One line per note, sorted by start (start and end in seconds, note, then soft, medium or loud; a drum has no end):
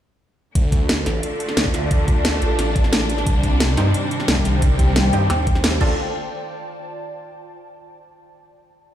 0.55 1.05 D2 loud
0.55 3.24 D3 medium
0.55 3.24 A3 medium
0.55 5.77 D4 medium
0.55 4.35 F4 medium
0.55 kick loud
0.55 closed hi-hat medium
0.71 4.35 D5 medium
0.71 kick loud
0.71 closed hi-hat medium
0.89 snare loud
0.89 closed hi-hat loud
1.06 1.22 A1 loud
1.06 snare medium
1.06 closed hi-hat medium
1.19 4.30 A5 medium
1.23 closed hi-hat loud
1.40 closed hi-hat medium
1.49 snare soft
1.57 1.90 D2 medium
1.57 snare loud
1.57 closed hi-hat loud
1.65 kick medium
1.74 snare soft
1.74 closed hi-hat medium
1.91 2.40 D2 loud
1.91 kick loud
1.91 closed hi-hat medium
2.08 kick loud
2.08 closed hi-hat medium
2.25 snare loud
2.25 closed hi-hat loud
2.42 2.57 A1 loud
2.42 closed hi-hat medium
2.59 3.25 A1 loud
2.59 snare soft
2.59 closed hi-hat loud
2.76 kick loud
2.76 closed hi-hat medium
2.84 snare soft
2.93 snare loud
2.93 closed hi-hat medium
3.10 closed hi-hat medium
3.18 snare soft
3.26 3.76 C2 loud
3.26 5.78 C3 medium
3.26 5.81 D#3 loud
3.26 5.78 G3 medium
3.26 kick loud
3.26 closed hi-hat medium
3.43 kick loud
3.43 closed hi-hat medium
3.55 5.81 C5 medium
3.60 snare loud
3.60 closed hi-hat medium
3.76 3.93 G2 loud
3.76 3.86 C4 medium
3.76 3.86 D#4 medium
3.76 3.86 G4 medium
3.76 5.81 G5 medium
3.76 snare medium
3.76 closed hi-hat medium
3.94 closed hi-hat medium
4.11 closed hi-hat medium
4.20 snare soft
4.28 4.61 C2 loud
4.28 snare loud
4.28 closed hi-hat medium
4.37 kick medium
4.45 snare soft
4.45 closed hi-hat medium
4.62 5.12 C2 loud
4.62 kick loud
4.62 closed hi-hat medium
4.79 kick loud
4.79 closed hi-hat medium
4.96 snare loud
4.96 closed hi-hat medium
5.13 5.29 G2 loud
5.13 5.21 C4 medium
5.13 5.21 D#4 medium
5.13 5.21 G4 medium
5.13 closed hi-hat medium
5.30 5.81 D#2 loud
5.30 snare soft
5.30 closed hi-hat medium
5.47 kick loud
5.47 closed hi-hat medium
5.55 snare soft
5.64 snare loud
5.64 closed hi-hat medium
5.81 5.97 D2 loud
5.81 5.97 D3 medium
5.81 5.97 A3 medium
5.81 5.93 D4 medium
5.81 5.97 D4 medium
5.81 5.93 F4 medium
5.81 7.12 F4 medium
5.81 5.93 A4 loud
5.81 kick loud
5.81 crash medium
5.86 7.12 D5 medium
6.08 7.29 A5 medium